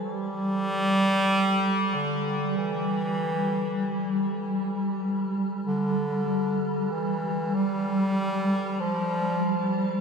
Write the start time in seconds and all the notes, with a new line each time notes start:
Already playing: G3 A4
0.04 G3
1.94 D3
2.57 E3
5.66 D3
6.91 E3
7.55 G3
8.80 F3